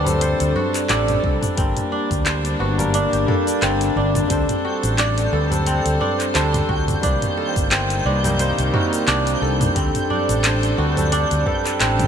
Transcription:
Already playing: fretless electric bass D2, tine electric piano G3 C4 D4 A4, kora C4 D4 A4, string section D4 A4 C5
0.05 tine electric piano G3 C4 D4, closed hi-hat, tabla ge, cabasa
0.09 tine electric piano A4
0.21 kora C5, closed hi-hat, cabasa
0.40 fretless electric bass D2, closed hi-hat, cabasa
0.55 kora F#4, tabla na, tabla tin, tabla ge
0.74 clap, closed hi-hat, cabasa
0.89 fretless electric bass A1, tine electric piano G3 C4 D4 A4, kora D4, clap, closed hi-hat, cabasa
1.08 closed hi-hat, mid tom, tabla tin, cabasa
1.24 fretless electric bass C2, kora A4, kick
1.43 closed hi-hat, mid tom, cabasa
1.56 fretless electric bass G1, tine electric piano G3 A#3 D4, string section G3 A#3, kora C4, synth texture G5, kick, closed hi-hat, cabasa
1.60 tine electric piano A#4
1.77 closed hi-hat, mid tom, cabasa
1.92 kora D4
2.10 fretless electric bass D2, kick, closed hi-hat, tabla tin, cabasa
2.26 kora C5, clap, closed hi-hat, cabasa
2.45 closed hi-hat, cabasa
2.59 fretless electric bass G1, kora F#4, tabla na
2.78 tine electric piano G3 A#3 D4 A#4, closed hi-hat, tabla ge, cabasa
2.94 kora D4, closed hi-hat, cabasa
3.13 fretless electric bass G1, closed hi-hat, cabasa
3.26 tine electric piano G3 A#3 D4, kora A4, mid tom
3.47 closed hi-hat, cabasa
3.62 fretless electric bass G1, kora C4, clap, closed hi-hat, cabasa
3.81 closed hi-hat, cabasa
3.96 fretless electric bass G1, kora D4
4.15 closed hi-hat, mid tom, cabasa
4.28 fretless electric bass D2, tine electric piano G3 C4 D4, string section A4 C5, kora C5, kick, closed hi-hat, cabasa
4.32 tine electric piano A4
4.49 closed hi-hat, mid tom, cabasa
4.65 kora F#4
4.83 fretless electric bass A1, closed hi-hat, tabla na, tabla tin, cabasa
4.98 kora D4, clap, closed hi-hat, cabasa
5.18 closed hi-hat, cabasa
5.33 fretless electric bass D2, kora A4, tabla na
5.50 tine electric piano G3 C4 D4, closed hi-hat, tabla ge, cabasa
5.54 tine electric piano A4
5.66 kora C4, closed hi-hat, cabasa
5.86 fretless electric bass D2, closed hi-hat, cabasa
6.00 kora D4, tabla na, tabla tin, tabla ge
6.20 clap, closed hi-hat, cabasa
6.34 fretless electric bass D2, tine electric piano G3 C4 D4 A4, kora C5, clap, closed hi-hat, cabasa
6.54 closed hi-hat, mid tom, tabla tin, cabasa
6.69 fretless electric bass D2, kora F#4, kick
6.88 closed hi-hat, mid tom, cabasa
7.01 fretless electric bass C2, string section D#3 A#3, tine electric piano D#3 G3 A#3 C4, kora D4, kick, closed hi-hat, cabasa
7.22 closed hi-hat, mid tom, cabasa
7.37 kora A4
7.56 fretless electric bass G1, kick, closed hi-hat, tabla tin, cabasa
7.71 kora C4, clap, closed hi-hat, cabasa
7.90 closed hi-hat, cabasa
8.05 fretless electric bass C2, kora D4, tabla na
8.24 tine electric piano D#3 G3 A#3 C4, closed hi-hat, tabla ge, cabasa
8.39 kora C5, closed hi-hat, cabasa
8.58 fretless electric bass C2, closed hi-hat, cabasa
8.72 tine electric piano D#3 G3 C4, kora F#4, mid tom
8.76 tine electric piano A#4
8.93 closed hi-hat, cabasa
9.08 fretless electric bass C2, kora D4, clap, closed hi-hat, cabasa
9.27 closed hi-hat, cabasa
9.42 fretless electric bass C2, kora A4
9.61 closed hi-hat, mid tom, cabasa
9.74 fretless electric bass D2, tine electric piano G3 C4 D4, kora C4, string section D4 A4, kick, closed hi-hat, cabasa
9.78 tine electric piano A4
9.95 closed hi-hat, mid tom, cabasa
10.10 kora D4, tabla ge
10.29 fretless electric bass A1, closed hi-hat, tabla na, tabla tin, cabasa
10.44 kora C5, clap, closed hi-hat, cabasa
10.63 closed hi-hat, cabasa
10.78 fretless electric bass D2, kora F#4, tabla na
10.96 tine electric piano G3 C4 D4 A4, closed hi-hat, tabla ge, cabasa
11.12 kora D4, closed hi-hat, cabasa
11.31 fretless electric bass D2, closed hi-hat, cabasa
11.45 tine electric piano G3 C4 D4 A4, kora A4, kick, tabla na, tabla tin, tabla ge
11.65 tine electric piano G3 C4 D4 A4, clap, closed hi-hat, cabasa
11.79 fretless electric bass A1, tine electric piano G3 C4 D4 A4, kora C4, clap, closed hi-hat, cabasa
11.99 closed hi-hat, mid tom, high tom, tabla tin, cabasa

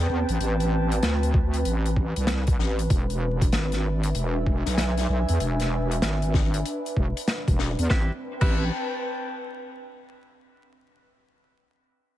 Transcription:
Already playing: analog synth pad C4 B4 G5 A5
0.09 wobble bass E2
0.29 wobble bass A1, closed hi-hat
0.40 wobble bass A1, closed hi-hat
0.60 closed hi-hat
0.92 closed hi-hat
1.03 wobble bass D2, snare, closed hi-hat
1.23 closed hi-hat
1.34 kick
1.54 closed hi-hat
1.65 wobble bass A1, closed hi-hat
1.86 closed hi-hat
1.97 kick
2.16 wobble bass C2, closed hi-hat
2.27 snare, closed hi-hat
2.47 kick, closed hi-hat
2.59 wobble bass A1, snare
2.79 closed hi-hat
2.90 wobble bass E1, analog synth pad D4, kick, closed hi-hat
3.10 closed hi-hat
3.41 kick, closed hi-hat
3.52 wobble bass G#1, snare, closed hi-hat
3.72 analog synth pad E5, snare, closed hi-hat
4.03 closed hi-hat
4.11 analog synth pad G#5, closed hi-hat
4.15 wobble bass E1
4.46 kick
4.66 wobble bass B1, snare, closed hi-hat
4.78 snare, closed hi-hat
4.97 snare, closed hi-hat
5.09 wobble bass B1
5.29 wobble bass E2, closed hi-hat
5.40 wobble bass E1, closed hi-hat
5.60 snare, closed hi-hat
5.92 closed hi-hat
6.02 wobble bass G#1, snare, closed hi-hat
6.22 closed hi-hat
6.34 kick, snare
6.54 closed hi-hat
6.65 closed hi-hat
6.86 closed hi-hat
6.97 wobble bass E1, kick
7.17 closed hi-hat
7.28 snare, closed hi-hat
7.48 wobble bass E1, kick, closed hi-hat
7.59 snare
7.79 wobble bass E2, closed hi-hat
7.90 wobble bass A1, clean electric guitar C4 E4 G4 B4, analog synth pad C4, kick, snare
8.03 analog synth pad B4
8.13 analog synth pad G5
8.19 analog synth pad A5
8.41 wobble bass A1, clean electric guitar C4 E4 G4 B4, kick, crash

